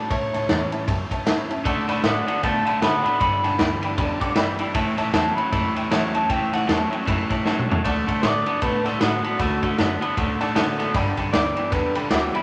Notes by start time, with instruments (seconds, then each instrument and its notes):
Already playing: steel-string acoustic guitar D4
0.10 upright bass A1, steel-string acoustic guitar A2, clean electric guitar C#5, honky-tonk piano C#5 E5 A5, kick, ride
0.33 upright bass C#2, honky-tonk piano C#5 E5 A5, snare, ride
0.49 upright bass E2, steel-string acoustic guitar E3 G3 C#4 E4, honky-tonk piano C#5 E5 A5, snare, ride
0.72 honky-tonk piano C#5 E5 A5, muted upright bass stroke, ride
0.87 steel-string acoustic guitar E2, upright bass F#2, honky-tonk piano C#5 E5 A5, kick, ride
1.11 honky-tonk piano C#5 E5 A5, muted upright bass stroke, kick, ride
1.25 upright bass A2, steel-string acoustic guitar E3 G3 C#4 E4, honky-tonk piano C#5 E5 A5, snare, ride
1.49 upright bass C#2, steel-string acoustic guitar C#4 E4, honky-tonk piano C#5 E5 A5, ride
1.64 upright bass D2, clean electric guitar D3 A3, steel-string acoustic guitar D3, honky-tonk piano D5 F#5 A5, kick, ride
1.88 upright bass F#2, clean electric guitar D3 A3, honky-tonk piano D5 F#5 B5, snare, ride
2.03 upright bass A2, clean electric guitar D3 B3 D5 F#5, steel-string acoustic guitar D3 A3 D4 F#4, honky-tonk piano F#5 A5, snare, ride
2.26 clean electric guitar D3 B3 D5 F#5, steel-string acoustic guitar D4 F#4, honky-tonk piano D5 F#5 A5, muted upright bass stroke, ride
2.43 steel-string acoustic guitar A2, upright bass B2, clean electric guitar D3 A3 F5 A5, honky-tonk piano D5 F#5 B5, kick, ride
2.65 clean electric guitar D3 A3 F5 A5, honky-tonk piano D5 F#5 B5, muted upright bass stroke, ride
2.81 steel-string acoustic guitar D3 A3 D4 F#4, clean electric guitar D3 B3 F#5 B5, upright bass D3, honky-tonk piano D5 F#5 A5, snare, ride
3.03 upright bass B2, clean electric guitar D3 B3 F#5 B5, steel-string acoustic guitar F#4, honky-tonk piano D5 F#5 A5, ride
3.07 steel-string acoustic guitar D4
3.19 upright bass G1, clean electric guitar G2 D3 B5, steel-string acoustic guitar G2, honky-tonk piano D5 G5 B5, kick, ride
3.44 upright bass B1, clean electric guitar G2 D3, honky-tonk piano D5 G5 A5, snare, ride
3.59 upright bass D2, clean electric guitar G2 E3, steel-string acoustic guitar D3 G3 B3 G4, honky-tonk piano D5 G5 B5, snare, ride
3.82 clean electric guitar G2 E3, honky-tonk piano D5 G5 B5, muted upright bass stroke, ride
3.97 upright bass E2, steel-string acoustic guitar F#2, clean electric guitar G2 D3, honky-tonk piano D5 G5 B5, kick, ride
4.20 clean electric guitar G2 D3, honky-tonk piano D5 G5 D6, kick, ride
4.35 clean electric guitar G2 E3, steel-string acoustic guitar G2, upright bass G2, honky-tonk piano D5 G5 B5, snare, ride
4.59 upright bass G1, clean electric guitar G2 E3, honky-tonk piano D5 G5 B5, ride
4.74 clean electric guitar A2 E3, steel-string acoustic guitar A2, honky-tonk piano C#5 E5 A5, kick, ride
4.97 upright bass C#2, clean electric guitar A2 E3, honky-tonk piano C#5 E5 A5, snare, ride
5.13 upright bass E2, clean electric guitar A2 F#3 A5, steel-string acoustic guitar E3 G3 C#4 E4, honky-tonk piano C#5 E5 G5, snare, ride
5.36 clean electric guitar A2 F#3 B5, steel-string acoustic guitar C#4 E4, honky-tonk piano C#5 E5 B5, muted upright bass stroke, ride
5.52 steel-string acoustic guitar E2, upright bass F#2, clean electric guitar A2 E3, honky-tonk piano C#5 E5 A5, kick, ride
5.75 clean electric guitar A2 E3, honky-tonk piano C#5 E5 G5, muted upright bass stroke, ride
5.90 clean electric guitar A2 F#3, upright bass A2, steel-string acoustic guitar E3 G3 C#4 E4, honky-tonk piano C#5 E5 A5, snare, ride
6.14 upright bass G2, clean electric guitar A2 F#3 A5, steel-string acoustic guitar C#4 E4, honky-tonk piano C#5 E5 A5, ride
6.29 clean electric guitar A2 E3 G5, steel-string acoustic guitar A2, honky-tonk piano C#5 E5 A5, kick, ride
6.52 upright bass C#2, clean electric guitar A2 E3 F#5, honky-tonk piano C#5 E5 A5, snare, ride
6.67 upright bass E2, clean electric guitar A2 F#3 A5, steel-string acoustic guitar E3 G3 C#4 E4, honky-tonk piano C#5 E5 A5, snare, ride
6.90 clean electric guitar A2 F#3, steel-string acoustic guitar C#4 E4, honky-tonk piano C#5 E5 G5, muted upright bass stroke, ride
7.05 upright bass F#2, clean electric guitar A2 E3, steel-string acoustic guitar B2, honky-tonk piano C#5 E5 B5, kick, ride
7.29 clean electric guitar A2 E3, honky-tonk piano C#5 E5 A5, kick, ride
7.45 clean electric guitar A2 F#3, upright bass A2, steel-string acoustic guitar C#3, honky-tonk piano C#5 E5 A5, snare
7.59 mid tom
7.69 clean electric guitar A2 F#3, honky-tonk piano C#5 E5 A5, floor tom
7.84 upright bass D2, clean electric guitar D3 A3, steel-string acoustic guitar D3, honky-tonk piano D5 F#5 A5, kick, ride
8.07 clean electric guitar D3 A3, honky-tonk piano D5 F#5 A5, kick, ride
8.22 upright bass A2, steel-string acoustic guitar D3 A3 D4 F#4, clean electric guitar D3 B3 D5, honky-tonk piano F#5 A5, snare, ride
8.45 clean electric guitar D3 B3, steel-string acoustic guitar D4 F#4, honky-tonk piano D5 F#5 A5, ride
8.61 steel-string acoustic guitar A2, upright bass B2, clean electric guitar D3 A3 B4, honky-tonk piano D5 F#5 A5, kick, ride
8.84 clean electric guitar D3 A3 A4, honky-tonk piano D5 F#5 A5, muted upright bass stroke, snare, ride
8.99 upright bass A2, clean electric guitar D3 B3 F#4, steel-string acoustic guitar D3 A3 D4 F#4, honky-tonk piano D5 F#5 B5, snare, ride
9.23 clean electric guitar D3 B3 F#4, steel-string acoustic guitar D4 F#4, honky-tonk piano D5 F#5 A5, ride
9.39 upright bass D2, steel-string acoustic guitar D3, clean electric guitar D3 A3, honky-tonk piano D5 F#5 B5, kick, snare, ride
9.62 clean electric guitar D3 A3, honky-tonk piano D5 F#5 A5, kick, ride
9.78 upright bass F#2, steel-string acoustic guitar D3 A3 D4 F#4, clean electric guitar D3 B3, honky-tonk piano D5 F#5 A5, snare, ride
10.01 clean electric guitar D3 B3, steel-string acoustic guitar F#4, honky-tonk piano D5 F#5 B5, ride
10.17 upright bass D2, steel-string acoustic guitar A2, clean electric guitar D3 A3, honky-tonk piano D5 F#5 A5, kick, ride
10.40 clean electric guitar D3 A3, honky-tonk piano D5 F#5 A5, muted upright bass stroke, snare, ride
10.55 upright bass A2, clean electric guitar D3 B3, steel-string acoustic guitar D3 A3 D4 F#4, honky-tonk piano D5 F#5 A5, snare, ride
10.78 upright bass F#1, clean electric guitar D3 B3, honky-tonk piano D5 F#5 A5, snare, ride
10.94 upright bass G1, clean electric guitar G2 D3, steel-string acoustic guitar G2, honky-tonk piano D5 G5 B5, kick, ride
11.17 clean electric guitar G2 D3, honky-tonk piano D5 G5 B5, kick, ride
11.32 upright bass D2, clean electric guitar G2 E3 D5, steel-string acoustic guitar D3 G3 B3 G4, honky-tonk piano D5 G5 B5, snare, ride
11.56 clean electric guitar G2 E3, steel-string acoustic guitar B3 G4, honky-tonk piano D5 G5 B5, ride
11.71 upright bass E2, clean electric guitar G2 D3 B4, steel-string acoustic guitar D3, honky-tonk piano D5 G5 B5, kick, snare, ride
11.95 clean electric guitar G2 D3 A4, honky-tonk piano D5 G5 B5, muted upright bass stroke, ride
12.09 upright bass D2, clean electric guitar G2 E3 F#4, steel-string acoustic guitar D3 G3 B3 G4, honky-tonk piano D5 G5 D6, snare, ride
12.33 clean electric guitar G2 E3 E4, steel-string acoustic guitar B3 G4, honky-tonk piano D5 G5 B5, ride